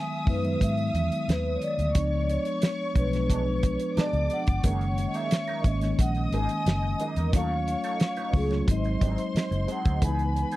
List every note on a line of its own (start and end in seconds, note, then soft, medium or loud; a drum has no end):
0.00 0.12 D#3 medium
0.00 0.10 F#3 medium
0.00 0.11 G#3 medium
0.00 0.12 B3 medium
0.00 1.91 E5 medium
0.00 0.25 G#5 medium
0.00 1.92 D#6 medium
0.26 0.55 F#2 medium
0.26 0.41 F#3 medium
0.26 0.42 G#3 medium
0.26 0.42 B3 medium
0.26 0.43 D#4 medium
0.26 kick medium
0.26 open hi-hat soft
0.30 0.63 B4 medium
0.42 1.58 D#3 medium
0.42 1.56 F#3 medium
0.42 1.57 G#3 medium
0.42 1.57 B3 medium
0.42 closed hi-hat medium
0.61 0.88 G#2 medium
0.61 1.25 E5 loud
0.61 kick medium
0.61 closed hi-hat medium
0.77 closed hi-hat soft
0.94 1.08 E2 medium
0.94 closed hi-hat medium
1.12 closed hi-hat soft
1.28 1.56 D#2 medium
1.28 1.57 B4 medium
1.28 snare medium
1.28 closed hi-hat medium
1.56 1.62 C#5 medium
1.62 2.21 D5 medium
1.62 closed hi-hat medium
1.78 1.92 D2 medium
1.78 closed hi-hat medium
1.95 2.36 C#2 medium
1.95 2.80 F3 medium
1.95 2.80 G#3 medium
1.95 2.81 B3 medium
1.95 2.81 D4 medium
1.95 3.93 C#5 medium
1.95 3.93 C#6 medium
1.95 kick loud
1.95 closed hi-hat loud
2.22 2.29 D5 medium
2.29 2.88 C#5 medium
2.29 closed hi-hat medium
2.45 closed hi-hat soft
2.62 snare loud
2.62 closed hi-hat medium
2.90 2.96 C#5 medium
2.94 3.76 B1 medium
2.94 3.09 F3 medium
2.94 3.09 G#3 medium
2.94 3.10 B3 medium
2.94 3.11 D4 medium
2.94 kick medium
2.94 closed hi-hat medium
2.98 4.01 B4 medium
3.11 4.25 F3 medium
3.11 4.25 G#3 medium
3.11 4.26 B3 medium
3.11 4.27 D4 medium
3.11 snare soft
3.11 closed hi-hat soft
3.29 3.44 B2 medium
3.29 3.44 G#3 medium
3.29 3.44 D4 medium
3.29 kick medium
3.29 closed hi-hat medium
3.63 kick medium
3.63 closed hi-hat medium
3.79 closed hi-hat medium
3.97 4.45 B2 medium
3.97 4.45 G#3 medium
3.97 4.45 D4 medium
3.97 4.63 D5 medium
3.97 4.33 D5 medium
3.97 4.63 D6 medium
3.97 muted fingered electric bass stroke soft
3.97 snare medium
3.97 closed hi-hat medium
4.13 4.27 C#2 medium
4.13 closed hi-hat soft
4.30 5.11 F#5 medium
4.30 closed hi-hat medium
4.47 4.61 G1 medium
4.47 kick medium
4.47 closed hi-hat soft
4.63 5.05 F#1 medium
4.63 5.48 D#3 medium
4.63 4.83 F#3 medium
4.63 5.48 G#3 medium
4.63 4.84 A#3 medium
4.63 5.49 A#3 medium
4.63 5.50 C#4 medium
4.63 4.84 D#4 medium
4.63 4.84 G#4 medium
4.63 5.96 C#5 medium
4.63 5.96 C#6 medium
4.63 kick loud
4.63 closed hi-hat loud
4.81 closed hi-hat soft
4.98 muted clean electric guitar stroke soft
4.98 closed hi-hat medium
5.08 5.15 D#5 medium
5.14 5.30 F#3 soft
5.14 5.30 A#3 soft
5.14 5.30 D#4 medium
5.14 5.30 G#4 medium
5.14 5.62 E5 medium
5.14 closed hi-hat soft
5.31 snare medium
5.31 closed hi-hat medium
5.47 5.64 F#3 soft
5.47 5.64 A#3 medium
5.47 5.65 D#4 medium
5.47 5.66 A#4 medium
5.47 closed hi-hat soft
5.64 5.92 G#1 medium
5.64 5.79 D#3 medium
5.64 5.79 G#3 medium
5.64 5.80 A#3 medium
5.64 5.80 C#4 medium
5.64 6.01 D#5 medium
5.64 muted clean electric guitar stroke soft
5.64 kick medium
5.64 closed hi-hat medium
5.81 6.94 D#3 medium
5.81 6.94 G#3 medium
5.81 6.95 A#3 medium
5.81 6.95 C#4 medium
5.81 muted clean electric guitar stroke soft
5.81 snare soft
5.81 closed hi-hat medium
5.98 6.26 A#1 medium
5.98 7.30 D#5 medium
5.98 6.15 F#5 medium
5.98 7.30 D#6 medium
5.98 kick medium
5.98 closed hi-hat medium
6.15 muted clean electric guitar stroke soft
6.15 closed hi-hat soft
6.32 6.46 G#1 medium
6.32 6.52 F#3 medium
6.32 6.50 A#3 medium
6.32 6.50 D#4 medium
6.32 6.49 G#4 medium
6.32 7.02 G#5 medium
6.32 closed hi-hat medium
6.49 muted clean electric guitar stroke soft
6.49 closed hi-hat medium
6.66 6.93 F#1 medium
6.66 muted clean electric guitar stroke soft
6.66 snare medium
6.66 closed hi-hat medium
6.83 muted clean electric guitar stroke soft
7.00 7.15 F#3 soft
7.00 7.15 A#3 soft
7.00 7.15 D#4 soft
7.00 7.16 G#4 soft
7.00 7.16 D#5 medium
7.00 closed hi-hat medium
7.16 7.33 E2 medium
7.16 7.32 F#3 soft
7.16 7.32 A#3 soft
7.16 7.32 D#4 soft
7.16 7.32 A#4 medium
7.16 closed hi-hat soft
7.32 7.74 D#2 medium
7.32 8.17 F#3 medium
7.32 7.53 F#3 medium
7.32 8.18 A3 medium
7.32 7.53 C#4 medium
7.32 8.18 C#4 medium
7.32 7.53 D#4 medium
7.32 8.19 F4 medium
7.32 7.53 A4 medium
7.32 8.65 C#5 medium
7.32 8.65 C#6 medium
7.32 kick medium
7.32 closed hi-hat loud
7.36 8.38 F5 medium
7.67 muted clean electric guitar stroke soft
7.67 closed hi-hat medium
7.84 7.99 F#3 soft
7.84 7.99 C#4 soft
7.84 7.99 D#4 soft
7.84 7.99 A4 soft
7.84 closed hi-hat soft
8.00 muted clean electric guitar stroke soft
8.00 snare medium
8.00 closed hi-hat medium
8.16 8.33 F#3 medium
8.16 8.34 C#4 medium
8.16 8.34 D#4 medium
8.16 8.35 B4 medium
8.16 closed hi-hat soft
8.33 8.61 C#2 medium
8.33 8.47 F#3 medium
8.33 8.48 A3 medium
8.33 8.49 C#4 medium
8.33 8.49 F4 medium
8.33 8.51 G#4 medium
8.33 muted clean electric guitar stroke soft
8.33 kick loud
8.33 open hi-hat soft
8.49 8.66 F#3 medium
8.49 8.67 A3 medium
8.49 8.68 C#4 medium
8.49 8.69 F4 medium
8.49 muted clean electric guitar stroke soft
8.49 snare soft
8.49 closed hi-hat medium
8.66 8.95 G#1 medium
8.66 9.80 F#3 medium
8.66 9.80 G#3 medium
8.66 9.81 C4 medium
8.66 9.98 C5 medium
8.66 9.98 C6 medium
8.66 kick medium
8.66 closed hi-hat medium
8.70 9.81 D#4 medium
8.70 9.66 D#5 medium
8.84 muted clean electric guitar stroke soft
8.84 closed hi-hat soft
9.01 9.15 G#1 medium
9.01 9.21 F#3 medium
9.01 9.18 C4 medium
9.01 9.18 D#4 medium
9.01 9.17 G#4 medium
9.01 kick medium
9.01 closed hi-hat medium
9.18 muted clean electric guitar stroke soft
9.18 closed hi-hat medium
9.35 muted fingered electric bass stroke soft
9.35 muted clean electric guitar stroke soft
9.35 snare medium
9.35 closed hi-hat medium
9.51 9.65 F#1 medium
9.51 muted clean electric guitar stroke soft
9.51 closed hi-hat soft
9.67 9.83 F#3 soft
9.67 9.83 C4 soft
9.67 9.83 D#4 medium
9.67 9.83 G#4 medium
9.67 closed hi-hat medium
9.72 10.01 F#5 medium
9.84 9.99 D2 medium
9.84 10.00 F#3 soft
9.84 10.00 C4 soft
9.84 10.00 D#4 medium
9.84 10.00 G#4 medium
9.84 kick loud
9.84 closed hi-hat soft
10.00 10.42 C#2 medium
10.00 10.56 E3 medium
10.00 10.21 E3 medium
10.00 10.56 G#3 medium
10.00 10.21 B3 medium
10.00 10.56 B3 medium
10.00 10.21 D#4 medium
10.00 10.56 D#4 medium
10.00 10.22 G#4 medium
10.00 10.56 B4 medium
10.00 10.56 B5 medium
10.00 kick loud
10.00 closed hi-hat loud
10.04 10.56 G#5 medium
10.19 closed hi-hat soft
10.35 muted clean electric guitar stroke soft
10.35 closed hi-hat medium
10.52 10.56 B3 soft
10.52 10.56 D#4 medium
10.52 10.56 G#4 medium
10.52 closed hi-hat soft